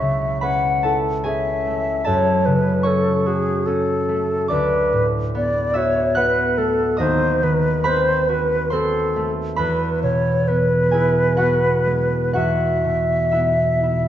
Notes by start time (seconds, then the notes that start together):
Already playing: C#2 E4 C#5 E5 C#6
0.02 C#3
0.41 C#4 B4 F#5 B5
0.83 E4 A4 A5
1.24 C#4 G#4 E5 G#5
1.67 A3
2.04 F#2 A4 C#5 A5
2.46 C#3 B4
2.83 C#4 A4 C#5 C#6
3.26 F#4 G#4
3.66 C#4 A4
4.09 A3
4.48 D2 B4 D5 D6
4.93 A2
5.35 B3 D5
5.74 F#4 C#5 E5 E6
6.15 B3 B4 F#5 F#6
6.58 A3 A4
6.97 D#2 C5 D#5 D#6
7.43 D#3 B4
7.84 C4 B4 C5 B5
8.29 F#4 B4
8.70 C4 A4 C5 C6
9.16 A3
9.56 E2 B4 B5
10.03 B2 C#5
10.48 B3 B4
10.91 E4 G#4 G#5
11.37 B3 F#4 F#5
11.86 G#3
12.33 E2 F#4 E5 F#5
12.84 B2
13.31 B3 E4 E5
13.83 E4